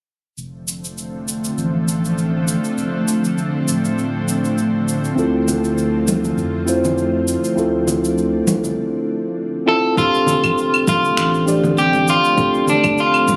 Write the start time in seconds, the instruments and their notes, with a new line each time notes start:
0.37 sub bass F1, ambient pad D3 F3 A3 C4, shaker
0.68 shaker
0.84 shaker
0.98 shaker
1.28 shaker
1.44 shaker
1.57 sub bass A1, shaker
1.88 shaker
2.05 shaker
2.18 shaker
2.48 shaker
2.64 shaker
2.77 sub bass F1, shaker
3.08 shaker
3.25 shaker
3.38 shaker
3.68 sub bass D1, shaker
3.85 shaker
3.98 shaker
4.28 shaker
4.45 shaker
4.58 shaker
4.88 shaker
5.05 shaker
5.16 sub bass D2, ambient pad F3, tine electric piano C4 E4 F4 A4, shaker
5.48 low conga, shaker
5.64 shaker
5.78 shaker
6.08 high conga, shaker
6.24 low conga, shaker
6.37 sub bass F2, shaker
6.66 tine electric piano C4 E4 F4 C5, shaker
6.85 low conga, shaker
6.98 shaker
7.28 shaker
7.44 shaker
7.55 sub bass D2, tine electric piano C4 E4 F4 A4, ambient pad D4, shaker
7.87 low conga, shaker
8.05 shaker
8.18 shaker
8.47 sub bass C2, high conga, shaker
8.64 low conga, shaker
9.66 tine electric piano C4 E4 F4 A4, clean electric guitar A4
9.96 sub bass F1, ambient pad D3 F3 A3 C4, tine electric piano C4 D4 G4 A4, clean electric guitar F4, kick, shaker
10.15 shaker
10.27 low conga, shaker
10.44 kick, muted conga, claves, shaker
10.58 shaker
10.74 claves, shaker
10.87 clean electric guitar F4, kick, high conga, shaker
11.03 low conga, shaker
11.17 sub bass A1, finger snap, shaker
11.34 shaker
11.45 tine electric piano C4 D4 G4 D5, muted conga, shaker
11.64 low conga, shaker
11.78 clean electric guitar G4, shaker
11.93 muted conga, shaker
12.08 clean electric guitar F4, shaker
12.24 shaker
12.36 sub bass F1, tine electric piano C4 D4 G4 A4, kick, shaker
12.54 shaker
12.67 clean electric guitar D4, low conga, shaker
12.84 kick, muted conga, claves, shaker
12.98 clean electric guitar F4, shaker
13.14 claves, shaker
13.28 sub bass D1, kick, high conga, shaker